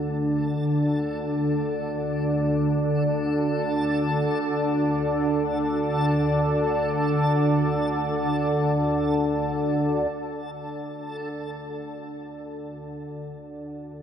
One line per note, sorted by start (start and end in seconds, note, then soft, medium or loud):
0.00 10.11 D2 medium
0.00 10.10 D3 medium
0.00 14.02 D4 medium
0.00 10.14 A4 medium
0.00 14.02 A4 medium
0.00 14.02 D5 medium
10.12 14.02 D2 medium
10.12 14.02 D3 medium